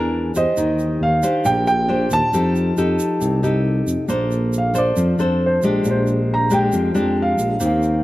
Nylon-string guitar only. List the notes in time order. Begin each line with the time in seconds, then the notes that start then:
Already playing: E3 D4 G#4 A#4
0.36 G4 C5
0.57 D#3
1.23 D4 G4 C5
1.45 A#2
1.88 D4 G4 C5
2.33 F3 D#4 G4 A4
2.78 D#4 G4 A4
3.21 C3
3.43 D#4 G4 A4
4.08 A#3 D4 A4 C5
4.74 D4 A4 C5
4.97 F3
5.19 D4 A4 C5
5.63 G#3 D4 G4
5.86 A#2
6.50 G#3 D4 G4
6.73 F3
6.94 G#3 D4 G4
7.60 D#3 A#3 C4 G4